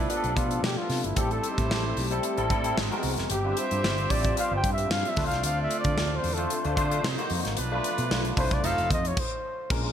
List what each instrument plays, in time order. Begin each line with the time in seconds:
Already playing: tine electric piano F3 B3 D4 A4, horn section F3 D4 B4, string machine A3 B3 D4, flugelhorn E4
0.09 tine electric piano F3 B3 D4 G4, flugelhorn D4, closed hi-hat
0.17 tine electric piano A4
0.24 fretless electric bass B1, closed hi-hat
0.37 fretless electric bass B2, flugelhorn F4, kick, closed hi-hat
0.51 closed hi-hat
0.63 fretless electric bass B2, flugelhorn G4, snare
0.77 flugelhorn F4
0.89 fretless electric bass C3, snare, open hi-hat
1.04 fretless electric bass G1, flugelhorn E4, closed hi-hat
1.16 fretless electric bass A1, tine electric piano G3 C4 E4 A4, horn section A3 G4 C5, string machine C4 G4, flugelhorn G4, kick, closed hi-hat
1.31 flugelhorn A4, closed hi-hat
1.44 closed hi-hat
1.51 flugelhorn D#4
1.58 fretless electric bass A2, flugelhorn E4, kick, closed hi-hat
1.70 fretless electric bass A1, snare
1.96 fretless electric bass B1, open hi-hat
2.11 tine electric piano G3 C4 E4 A4, closed hi-hat
2.23 closed hi-hat
2.37 fretless electric bass A1, tine electric piano G3 C4 E4 A4, closed hi-hat
2.50 fretless electric bass A2, tine electric piano G3 C4 E4 A4, kick, closed hi-hat
2.64 tine electric piano G3 C4 E4 A4, closed hi-hat
2.77 fretless electric bass G#1, horn section F#3 D#4 C5, snare
2.91 tine electric piano G#3 B3 F#4 A#4, closed hi-hat
2.98 tine electric piano C4
3.03 fretless electric bass C2, open hi-hat
3.18 fretless electric bass F1, snare, closed hi-hat
3.30 fretless electric bass G1, string machine G3 F4, horn section C4 G4 E5, flugelhorn G4, closed hi-hat
3.44 tine electric piano G3 D4 F4 B4
3.52 tine electric piano C5
3.57 flugelhorn C5, closed hi-hat
3.71 fretless electric bass G2, closed hi-hat
3.84 fretless electric bass G1, snare
3.98 closed hi-hat
4.10 fretless electric bass A1, tine electric piano G3 D4 F4 C5, flugelhorn D5, kick, open hi-hat
4.24 kick, closed hi-hat
4.36 tine electric piano G3 D4 F4 B4, flugelhorn F5, closed hi-hat
4.44 tine electric piano C5
4.51 fretless electric bass G1
4.56 flugelhorn G5
4.64 fretless electric bass G2, kick, closed hi-hat
4.73 flugelhorn E5
4.78 closed hi-hat
4.90 fretless electric bass G2, flugelhorn F5, snare
5.05 flugelhorn E5, closed hi-hat
5.16 fretless electric bass D2, string machine D3 F4, tine electric piano A3 D4 F4 B4, horn section A3 F4 D5, kick, snare, open hi-hat
5.24 tine electric piano C5, flugelhorn F5
5.31 fretless electric bass C2, snare, closed hi-hat
5.44 fretless electric bass D2, flugelhorn F5, closed hi-hat
5.62 flugelhorn E5
5.71 closed hi-hat
5.80 flugelhorn D5
5.84 fretless electric bass D3, kick, closed hi-hat
5.97 fretless electric bass D2, snare
6.16 flugelhorn C5
6.24 fretless electric bass E2, open hi-hat
6.34 tine electric piano A3, flugelhorn A4, closed hi-hat
6.38 tine electric piano D4 F4 C5
6.50 closed hi-hat
6.64 fretless electric bass D2, tine electric piano A3 D4 F4 C5, closed hi-hat
6.76 fretless electric bass D3, tine electric piano A3 D4 F4 C5, kick, closed hi-hat
6.91 tine electric piano A3 D4 F4 C5, closed hi-hat
7.04 fretless electric bass C3, horn section F#3 D#4 C5, snare
7.18 tine electric piano A#3 D#4 F#4 C5, closed hi-hat
7.30 fretless electric bass F2, open hi-hat
7.45 fretless electric bass G#1, snare, closed hi-hat
7.57 fretless electric bass B1, horn section F3 D4 B4, string machine A3 B3 D4, closed hi-hat
7.71 tine electric piano A3 D4 F4 B4
7.84 closed hi-hat
7.98 fretless electric bass B2, closed hi-hat
8.10 fretless electric bass B1, snare
8.25 closed hi-hat
8.37 fretless electric bass C2, tine electric piano A3 D4 F4 B4, flugelhorn C5, kick, open hi-hat
8.51 flugelhorn D5, kick, closed hi-hat
8.63 fretless electric bass F1, horn section F3 D#4 A4, tine electric piano F#3 D#4 F4 C5, flugelhorn F5, closed hi-hat
8.70 tine electric piano A3
8.78 fretless electric bass F1, closed hi-hat
8.91 fretless electric bass F2, flugelhorn D#5, kick, closed hi-hat
9.05 flugelhorn C#5, closed hi-hat
9.17 flugelhorn C5, kick, crash
9.70 fretless electric bass A#1, string machine F3 G#3 C#4, tine electric piano G#3 A#3 C#4 F4 A#4, kick, crash